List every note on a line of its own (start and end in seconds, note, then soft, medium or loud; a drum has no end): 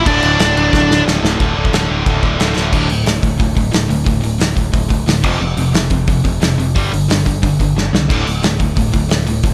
0.05 0.18 D1 loud
0.05 0.54 D2 loud
0.05 0.55 A2 loud
0.05 1.02 D4 medium
0.05 1.02 D5 medium
0.05 kick loud
0.05 crash loud
0.09 0.54 D3 loud
0.22 0.35 D1 loud
0.22 crash medium
0.39 0.52 D1 medium
0.39 snare loud
0.39 crash medium
0.55 0.68 D1 medium
0.55 1.06 A2 medium
0.55 1.05 D3 medium
0.55 crash medium
0.60 1.03 D2 medium
0.73 0.85 D1 medium
0.73 kick loud
0.73 snare medium
0.89 1.01 D1 loud
0.89 snare medium
1.04 1.18 D1 medium
1.04 1.37 D2 medium
1.04 1.38 A2 medium
1.04 snare medium
1.09 1.39 D3 loud
1.22 1.35 D1 medium
1.22 1.38 D2 medium
1.22 1.38 A2 medium
1.22 1.38 D3 medium
1.22 snare medium
1.39 1.53 D1 loud
1.39 1.55 D2 medium
1.39 1.55 A2 loud
1.39 1.54 D3 loud
1.39 kick loud
1.39 crash medium
1.55 1.70 D1 medium
1.55 1.71 D2 medium
1.55 1.72 A2 medium
1.55 1.72 D3 medium
1.65 kick medium
1.72 1.86 D1 medium
1.72 1.90 D2 medium
1.72 1.89 A2 medium
1.72 1.88 D3 medium
1.72 snare loud
1.72 crash medium
1.89 2.03 D1 medium
1.89 2.04 D2 medium
1.89 2.05 A2 medium
1.89 2.06 D3 loud
2.06 2.20 D1 medium
2.06 2.23 D2 medium
2.06 2.22 A2 medium
2.06 2.22 D3 medium
2.06 kick loud
2.06 crash medium
2.23 2.36 D1 medium
2.23 2.37 D2 medium
2.23 2.37 A2 loud
2.23 2.38 D3 loud
2.23 kick medium
2.38 2.53 D1 medium
2.38 2.55 D2 loud
2.38 2.55 A2 medium
2.38 2.54 D3 medium
2.38 snare medium
2.38 crash medium
2.55 2.70 D1 medium
2.55 2.71 D2 medium
2.55 2.72 A2 medium
2.55 2.71 D3 medium
2.55 snare medium
2.72 2.88 D1 medium
2.72 2.88 D2 medium
2.72 2.88 A2 medium
2.72 2.89 D3 medium
2.72 kick loud
2.72 crash loud
2.89 3.05 D1 medium
2.89 3.04 D2 medium
2.89 3.05 A2 medium
2.89 open hi-hat soft
3.06 3.21 D1 medium
3.06 3.21 D2 medium
3.06 3.22 A2 medium
3.06 snare loud
3.06 open hi-hat medium
3.22 3.38 D1 medium
3.22 3.38 D2 medium
3.22 3.38 A2 medium
3.22 kick medium
3.22 open hi-hat medium
3.40 3.55 D1 medium
3.40 3.55 D2 medium
3.40 3.55 A2 medium
3.40 kick loud
3.40 open hi-hat medium
3.56 3.72 D1 medium
3.56 3.71 D2 medium
3.56 3.71 A2 medium
3.56 kick medium
3.56 open hi-hat medium
3.72 3.88 D1 medium
3.72 3.88 D2 medium
3.72 3.88 A2 medium
3.72 snare loud
3.72 open hi-hat medium
3.89 4.05 D1 loud
3.89 4.05 D2 medium
3.89 4.05 A2 medium
3.89 open hi-hat medium
4.06 4.21 D1 medium
4.06 4.22 D2 medium
4.06 4.22 A2 medium
4.06 kick loud
4.06 open hi-hat medium
4.22 4.38 D1 medium
4.22 4.39 D2 medium
4.22 4.39 A2 medium
4.22 open hi-hat medium
4.40 4.55 D1 medium
4.40 4.55 D2 medium
4.40 4.56 A2 medium
4.40 snare loud
4.40 open hi-hat medium
4.56 4.72 D1 medium
4.56 4.72 D2 medium
4.56 4.72 A2 medium
4.56 kick medium
4.56 open hi-hat medium
4.73 4.89 D1 medium
4.73 4.88 D2 medium
4.73 4.88 A2 medium
4.73 kick loud
4.73 open hi-hat medium
4.89 5.06 D1 medium
4.89 5.05 D2 medium
4.89 5.05 A2 medium
4.89 kick medium
4.89 open hi-hat medium
5.07 5.24 D1 medium
5.07 5.23 D2 medium
5.07 5.23 A2 medium
5.07 snare loud
5.07 open hi-hat medium
5.24 5.39 F1 loud
5.24 5.40 F2 medium
5.24 5.41 C3 loud
5.24 5.41 F3 loud
5.24 kick loud
5.24 crash loud
5.40 5.56 F1 medium
5.40 5.56 F2 medium
5.40 5.56 C3 medium
5.57 5.72 F1 medium
5.57 5.73 F2 medium
5.57 5.73 C3 medium
5.57 open hi-hat medium
5.72 5.88 F1 loud
5.72 5.89 F2 medium
5.72 5.89 C3 medium
5.72 snare loud
5.72 open hi-hat medium
5.90 6.06 F1 medium
5.90 6.06 F2 medium
5.90 6.06 C3 medium
5.90 kick medium
5.90 open hi-hat medium
6.07 6.23 F1 medium
6.07 6.23 F2 medium
6.07 6.23 C3 medium
6.07 kick loud
6.07 open hi-hat medium
6.24 6.40 F1 medium
6.24 6.40 F2 medium
6.24 6.40 C3 medium
6.24 kick medium
6.24 open hi-hat medium
6.41 6.56 F1 medium
6.41 6.57 F2 medium
6.41 6.57 C3 medium
6.41 snare loud
6.41 open hi-hat medium
6.58 6.73 F1 medium
6.58 6.73 F2 medium
6.58 6.74 C3 medium
6.58 open hi-hat medium
6.75 6.91 G1 medium
6.75 6.90 G2 medium
6.75 6.91 D3 medium
6.75 6.91 G3 loud
6.75 kick loud
6.75 open hi-hat medium
6.91 7.07 G1 medium
6.91 7.07 G2 medium
6.91 7.07 D3 medium
6.91 open hi-hat medium
7.08 7.24 G1 medium
7.08 7.24 G2 medium
7.08 7.24 D3 medium
7.08 snare loud
7.08 open hi-hat medium
7.26 7.41 G1 medium
7.26 7.41 G2 medium
7.26 7.41 D3 medium
7.26 kick medium
7.26 open hi-hat medium
7.43 7.58 G1 medium
7.43 7.58 G2 medium
7.43 7.58 D3 medium
7.43 kick loud
7.43 open hi-hat medium
7.59 7.74 G1 medium
7.59 7.75 G2 medium
7.59 7.75 D3 medium
7.59 kick medium
7.59 open hi-hat medium
7.75 7.91 G1 medium
7.75 7.92 G2 medium
7.75 7.92 D3 medium
7.75 snare medium
7.93 8.08 C2 medium
7.93 8.09 G2 medium
7.93 8.09 D3 medium
7.93 snare medium
8.09 8.25 D1 medium
8.09 8.23 D2 medium
8.09 8.25 A2 loud
8.09 8.26 D3 loud
8.09 kick loud
8.09 crash loud
8.25 8.42 D1 medium
8.25 8.41 D2 medium
8.25 8.41 A2 medium
8.25 open hi-hat medium
8.43 8.59 D1 medium
8.43 8.58 D2 medium
8.43 8.58 A2 medium
8.43 snare loud
8.43 open hi-hat medium
8.59 8.75 D1 medium
8.59 8.74 D2 medium
8.59 8.75 A2 medium
8.59 kick medium
8.59 open hi-hat medium
8.76 8.92 D1 medium
8.76 8.91 D2 medium
8.76 8.91 A2 medium
8.76 kick loud
8.76 open hi-hat medium
8.92 9.08 D1 medium
8.92 9.08 D2 medium
8.92 9.08 A2 medium
8.92 kick medium
8.92 open hi-hat medium
9.09 9.25 D1 medium
9.09 9.25 D2 medium
9.09 9.25 A2 medium
9.09 snare loud
9.09 open hi-hat medium
9.26 9.42 D1 medium
9.26 9.42 D2 medium
9.26 9.42 A2 medium
9.26 open hi-hat medium
9.43 9.54 D1 medium
9.43 9.54 D2 medium
9.43 9.54 A2 medium
9.43 kick loud
9.43 open hi-hat medium